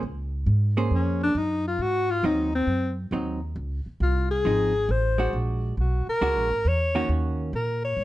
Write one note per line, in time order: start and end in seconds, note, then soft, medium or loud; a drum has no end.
0.03 0.46 C#2 medium
0.46 0.89 G#2 medium
0.77 1.32 A#3 medium
0.77 1.33 C#4 medium
0.77 1.33 G#4 medium
0.77 1.33 C5 medium
0.91 1.34 F2 medium
0.91 1.21 C#4 medium
1.23 1.39 D4 medium
1.35 1.78 F#2 medium
1.35 1.66 D#4 medium
1.68 1.84 F4 medium
1.79 2.22 G#2 medium
1.79 2.12 F#4 medium
2.11 2.27 F4 medium
2.23 2.66 D#2 medium
2.23 2.51 F#3 medium
2.23 2.51 C4 medium
2.23 2.51 D#4 medium
2.23 2.55 D#4 medium
2.55 2.96 C4 medium
2.67 3.10 F#2 medium
3.11 3.54 D#2 medium
3.11 3.39 F#3 medium
3.11 3.39 C4 soft
3.11 3.40 D#4 medium
3.56 3.84 C#2 medium
3.86 muted upright bass stroke soft
4.00 4.43 C2 medium
4.00 4.29 F4 medium
4.31 4.93 G#4 medium
4.45 4.87 G#1 medium
4.45 4.72 F3 medium
4.45 4.72 C4 medium
4.45 4.72 D#4 medium
4.89 5.32 A1 medium
4.89 5.34 C5 medium
5.18 5.74 G#3 medium
5.18 5.75 D4 medium
5.18 5.75 F#4 medium
5.33 5.76 A#1 medium
5.77 6.05 B1 medium
5.77 6.07 F#4 medium
6.07 6.69 A#4 medium
6.07 muted upright bass stroke soft
6.21 6.36 C#2 medium
6.21 6.48 G#3 medium
6.21 6.48 D4 medium
6.21 6.49 F#4 medium
6.36 6.50 A#1 medium
6.50 6.64 G#1 medium
6.65 7.08 E2 medium
6.65 7.11 C#5 medium
6.95 7.51 D#3 medium
6.95 7.51 A#3 medium
6.95 7.51 C#4 medium
6.95 7.51 F#4 medium
7.09 7.52 D#2 medium
7.53 7.96 A#2 medium
7.53 7.83 A#4 medium
7.85 8.04 C#5 medium
7.97 8.04 G#2 medium